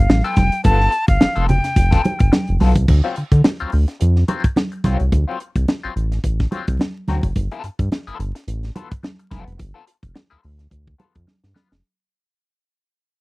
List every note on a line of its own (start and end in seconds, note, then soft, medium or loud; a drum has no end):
0.00 0.26 F5 medium
0.09 0.22 A1 loud
0.09 muted clean electric guitar stroke medium
0.09 snare loud
0.09 high conga medium
0.24 0.36 B3 medium
0.24 0.36 F4 medium
0.24 0.37 A4 medium
0.24 0.64 G5 loud
0.24 closed hi-hat soft
0.36 0.50 F1 medium
0.36 muted clean electric guitar stroke medium
0.36 kick medium
0.36 snare soft
0.36 closed hi-hat medium
0.36 high conga loud
0.52 muted clean electric guitar stroke soft
0.52 closed hi-hat medium
0.64 0.88 G1 loud
0.64 0.90 B3 medium
0.64 0.91 F4 medium
0.64 0.91 A4 loud
0.64 1.05 A5 loud
0.64 kick loud
0.64 closed hi-hat medium
0.64 muted conga medium
0.81 snare soft
0.92 closed hi-hat medium
1.08 1.18 G1 medium
1.08 1.46 F5 loud
1.08 muted clean electric guitar stroke soft
1.08 kick loud
1.08 closed hi-hat medium
1.20 1.28 F1 medium
1.20 muted clean electric guitar stroke soft
1.20 snare loud
1.20 high conga medium
1.35 1.60 F1 loud
1.35 1.47 B3 medium
1.35 1.48 F4 medium
1.35 1.48 A4 medium
1.35 closed hi-hat soft
1.48 2.56 G5 medium
1.48 muted clean electric guitar stroke soft
1.48 closed hi-hat medium
1.48 low conga medium
1.64 muted clean electric guitar stroke soft
1.64 snare soft
1.64 closed hi-hat medium
1.76 2.00 F1 loud
1.76 muted clean electric guitar stroke soft
1.76 kick medium
1.76 closed hi-hat medium
1.91 2.03 B3 medium
1.91 2.03 F4 medium
1.91 2.03 A4 loud
1.91 kick medium
1.91 snare soft
1.91 closed hi-hat soft
2.05 closed hi-hat medium
2.05 muted conga medium
2.19 2.30 G1 medium
2.19 muted clean electric guitar stroke soft
2.19 kick medium
2.19 closed hi-hat medium
2.32 muted clean electric guitar stroke soft
2.32 snare loud
2.32 high conga medium
2.48 2.59 F1 medium
2.48 closed hi-hat soft
2.60 2.74 B1 loud
2.60 2.77 B3 medium
2.60 2.76 F4 medium
2.60 2.75 A4 medium
2.60 snare soft
2.60 open hi-hat medium
2.60 high conga medium
2.76 2.86 C2 medium
2.76 muted clean electric guitar stroke soft
2.76 kick loud
2.76 closed hi-hat soft
2.88 3.01 D2 loud
2.88 muted clean electric guitar stroke soft
2.88 kick loud
2.88 crash loud
2.88 muted conga medium
3.04 3.16 F#3 medium
3.04 3.16 C4 medium
3.04 3.16 F4 medium
3.16 3.24 D3 soft
3.16 closed hi-hat medium
3.32 3.42 D3 medium
3.32 muted clean electric guitar stroke soft
3.32 kick medium
3.32 closed hi-hat medium
3.44 muted clean electric guitar stroke soft
3.44 snare loud
3.44 high conga medium
3.59 3.66 D2 soft
3.59 3.72 F#3 medium
3.59 3.72 C4 medium
3.59 3.72 F4 medium
3.59 closed hi-hat soft
3.72 3.86 D2 loud
3.72 muted clean electric guitar stroke soft
3.72 open hi-hat soft
3.88 muted clean electric guitar stroke medium
3.88 snare soft
3.88 closed hi-hat medium
4.00 4.24 F2 loud
4.00 muted clean electric guitar stroke soft
4.00 closed hi-hat medium
4.16 snare soft
4.28 4.45 F#3 medium
4.28 4.44 C4 medium
4.28 4.44 F4 medium
4.28 closed hi-hat medium
4.28 muted conga medium
4.44 muted clean electric guitar stroke soft
4.44 kick loud
4.44 closed hi-hat medium
4.56 muted clean electric guitar stroke soft
4.56 snare loud
4.56 high conga medium
4.72 muted clean electric guitar stroke medium
4.72 closed hi-hat soft
4.84 4.97 C2 medium
4.84 5.04 F#3 medium
4.84 4.99 C4 medium
4.84 4.99 F4 loud
4.84 kick medium
4.84 snare soft
4.84 closed hi-hat medium
4.84 high conga medium
5.00 5.10 C2 loud
5.00 muted clean electric guitar stroke medium
5.00 closed hi-hat soft
5.12 5.25 D2 loud
5.12 muted clean electric guitar stroke soft
5.12 kick loud
5.12 closed hi-hat medium
5.12 muted conga medium
5.28 5.39 F#3 medium
5.28 5.40 C4 medium
5.28 5.40 F4 medium
5.40 muted clean electric guitar stroke soft
5.40 closed hi-hat medium
5.56 5.66 C2 medium
5.56 muted clean electric guitar stroke medium
5.56 kick medium
5.56 closed hi-hat medium
5.68 muted clean electric guitar stroke soft
5.68 snare loud
5.68 high conga medium
5.83 5.89 A1 medium
5.83 5.95 F#3 medium
5.83 5.95 C4 medium
5.83 5.96 F4 medium
5.96 6.19 A1 loud
5.96 closed hi-hat medium
6.12 muted clean electric guitar stroke medium
6.12 snare soft
6.12 closed hi-hat medium
6.24 6.47 A1 loud
6.24 muted clean electric guitar stroke soft
6.24 kick medium
6.24 closed hi-hat loud
6.40 kick loud
6.40 snare soft
6.40 closed hi-hat soft
6.51 6.68 F#3 medium
6.51 6.68 C4 medium
6.51 6.67 F4 medium
6.51 closed hi-hat medium
6.51 muted conga medium
6.68 6.78 C2 loud
6.68 muted clean electric guitar stroke soft
6.68 kick loud
6.68 closed hi-hat medium
6.79 muted clean electric guitar stroke soft
6.79 snare loud
6.79 high conga medium
7.08 7.21 D2 loud
7.08 7.25 F#3 medium
7.08 7.23 C4 medium
7.08 7.24 F#4 medium
7.08 snare soft
7.08 closed hi-hat medium
7.08 high conga medium
7.23 7.33 F#1 medium
7.23 muted clean electric guitar stroke soft
7.23 kick loud
7.23 closed hi-hat medium
7.36 7.49 G1 loud
7.36 muted clean electric guitar stroke soft
7.36 kick medium
7.36 closed hi-hat medium
7.36 muted conga medium
7.51 7.63 B3 medium
7.51 7.63 F4 medium
7.51 7.64 A4 loud
7.51 closed hi-hat soft
7.64 7.70 G2 soft
7.64 muted clean electric guitar stroke soft
7.64 closed hi-hat medium
7.79 7.89 G2 medium
7.79 muted clean electric guitar stroke soft
7.79 kick medium
7.79 closed hi-hat medium
7.92 muted clean electric guitar stroke soft
7.92 snare loud
7.92 high conga medium
8.07 8.12 G1 medium
8.07 8.18 B3 medium
8.07 8.19 F4 medium
8.07 8.19 A4 medium
8.07 closed hi-hat soft
8.19 8.32 G1 loud
8.19 muted clean electric guitar stroke soft
8.19 closed hi-hat medium
8.35 muted clean electric guitar stroke medium
8.35 snare soft
8.35 closed hi-hat medium
8.47 8.71 A1 loud
8.47 muted clean electric guitar stroke soft
8.47 closed hi-hat medium
8.63 snare soft
8.63 closed hi-hat soft
8.75 8.92 B3 medium
8.75 8.90 F4 medium
8.75 8.89 A4 medium
8.75 closed hi-hat medium
8.75 muted conga medium
8.91 muted clean electric guitar stroke soft
8.91 kick medium
8.91 closed hi-hat medium
9.03 muted clean electric guitar stroke soft
9.03 snare loud
9.03 high conga medium
9.19 muted clean electric guitar stroke soft
9.19 closed hi-hat soft
9.31 9.45 F1 medium
9.31 9.52 B3 medium
9.31 9.46 F4 loud
9.31 9.45 A4 loud
9.31 kick medium
9.31 snare soft
9.31 closed hi-hat medium
9.31 high conga medium
9.46 9.57 F1 medium
9.46 muted clean electric guitar stroke soft
9.46 closed hi-hat soft
9.58 9.73 G1 loud
9.58 muted clean electric guitar stroke soft
9.58 kick loud
9.58 closed hi-hat medium
9.58 muted conga medium
9.74 9.85 B3 medium
9.74 9.86 F4 medium
9.74 9.86 A4 medium
9.87 muted clean electric guitar stroke soft
9.87 closed hi-hat medium
10.03 10.13 F1 medium
10.03 muted clean electric guitar stroke soft
10.03 kick medium
10.03 closed hi-hat soft
10.15 muted clean electric guitar stroke soft
10.15 snare loud
10.15 high conga medium
10.30 10.37 D2 soft
10.30 10.41 B3 medium
10.30 10.42 F4 medium
10.30 10.42 A4 medium
10.30 closed hi-hat soft
10.42 10.67 D2 loud
10.42 muted clean electric guitar stroke soft
10.42 open hi-hat soft
10.58 muted clean electric guitar stroke soft
10.58 snare soft
10.58 closed hi-hat medium
10.71 10.95 D2 loud
10.71 muted clean electric guitar stroke soft
10.71 kick medium
10.71 closed hi-hat medium
10.87 kick loud
10.98 11.16 B3 medium
10.98 11.14 F4 medium
10.98 11.14 A4 medium
10.98 closed hi-hat medium
10.98 muted conga medium
11.15 11.26 F2 medium
11.15 muted clean electric guitar stroke medium
11.15 kick loud
11.15 closed hi-hat medium
11.27 muted clean electric guitar stroke soft
11.27 snare medium
11.27 high conga medium
11.44 11.54 G2 loud
11.44 snare medium
11.54 11.72 B3 medium
11.54 11.70 F4 medium
11.54 11.70 B4 medium
11.54 snare medium
11.54 high conga medium
11.70 11.82 F1 medium
11.70 muted clean electric guitar stroke soft
11.70 snare medium